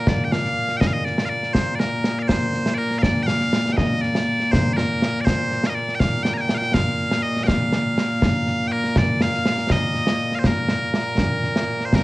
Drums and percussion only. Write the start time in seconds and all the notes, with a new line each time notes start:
0.07 concert bass drum, snare
0.32 snare
0.44 snare
0.68 snare
0.81 concert bass drum, snare
1.06 snare
1.18 snare
1.43 snare
1.55 concert bass drum, snare
1.80 snare
2.04 snare
2.29 concert bass drum, snare
2.54 snare
2.66 snare
2.91 snare
3.03 concert bass drum, snare
3.28 snare
3.41 snare
3.53 snare
3.66 snare
3.78 concert bass drum, snare
4.03 snare
4.15 snare
4.40 snare
4.53 concert bass drum, snare
4.78 snare
5.02 snare
5.27 concert bass drum, snare
5.51 snare
5.64 snare
5.89 snare
6.00 concert bass drum, snare
6.25 snare
6.37 snare
6.49 snare
6.62 snare
6.74 concert bass drum, snare
7.11 snare
7.36 snare
7.48 concert bass drum, snare
7.72 snare
7.98 snare
8.22 concert bass drum, snare
8.47 snare
8.84 snare
8.96 concert bass drum, snare
9.21 snare
9.34 snare
9.46 snare
9.58 snare
9.70 concert bass drum, snare
9.95 snare
10.07 snare
10.32 snare
10.44 concert bass drum, snare
10.69 snare
10.94 snare
11.18 concert bass drum, snare
11.44 snare
11.56 snare
11.80 snare
11.93 concert bass drum, snare